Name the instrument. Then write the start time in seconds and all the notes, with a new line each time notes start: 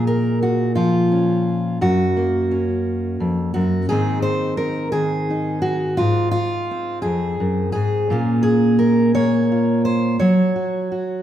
steel-string acoustic guitar
Already playing: A#2 G#3
0.07 A#4
0.43 F#4
0.75 F3 F4
1.12 C#4
1.81 F#2 F#4
2.17 A#3
2.51 C#4
3.20 F2
3.54 F#2 F#4
3.89 G#2 D#3 C4 D#4 G#4
4.22 C5
4.57 A#4
4.92 D#3 G#4
5.30 D#4
5.62 F#4
5.97 G#2 F4
6.31 F4
6.71 C4
7.02 F2 G#4
7.40 F#2
7.72 G#2 G#4
8.10 A#2 A#3 C#4 F4
8.43 G#4
8.79 A#4
9.15 A#3 C#5
9.52 F4
9.85 C5
10.19 F#3 C#5
10.56 F#4
10.92 F#4